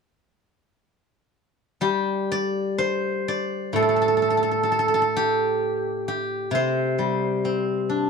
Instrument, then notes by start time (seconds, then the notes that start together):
guzheng
1.81 G3 G4
2.32 D5
2.78 C5
3.28 D5
3.73 A2 A4
3.82 A4
3.89 A4
3.96 A4
4.02 A4
4.08 A4
4.17 A4
4.22 A4
4.30 A4
4.37 A4
4.43 A4
4.51 A4
4.63 A4
4.72 A4
4.79 A4
4.88 A4
4.94 A4
5.02 A4
5.16 G4
6.08 G4
6.51 C3 C5
6.99 G3
7.45 C4
7.89 D4